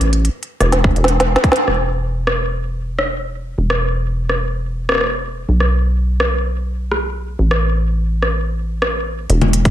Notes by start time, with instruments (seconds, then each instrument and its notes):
Already playing: acid bass A1
0.01 closed hi-hat
0.13 closed hi-hat
0.25 closed hi-hat
0.43 closed hi-hat
0.60 acid bass E1, cross-stick, closed hi-hat
0.72 snare, closed hi-hat
0.84 kick
0.96 acid bass E1, closed hi-hat
1.04 snare, closed hi-hat
1.20 snare, closed hi-hat
1.36 snare
1.44 kick, closed hi-hat
1.52 snare
1.56 closed hi-hat
1.68 acid bass E1, cross-stick
2.27 cross-stick
2.99 cross-stick
3.58 acid bass E1
3.70 cross-stick
4.29 cross-stick
4.89 cross-stick
4.92 cross-stick
4.95 cross-stick
4.98 cross-stick
5.01 cross-stick
5.04 cross-stick
5.07 cross-stick
5.10 cross-stick
5.49 acid bass B1
5.60 cross-stick
6.20 cross-stick
6.92 cross-stick
7.39 acid bass A1
7.51 cross-stick
8.22 cross-stick
8.82 cross-stick
9.30 acid bass E1, closed hi-hat
9.42 closed hi-hat, low conga
9.53 closed hi-hat
9.65 kick, closed hi-hat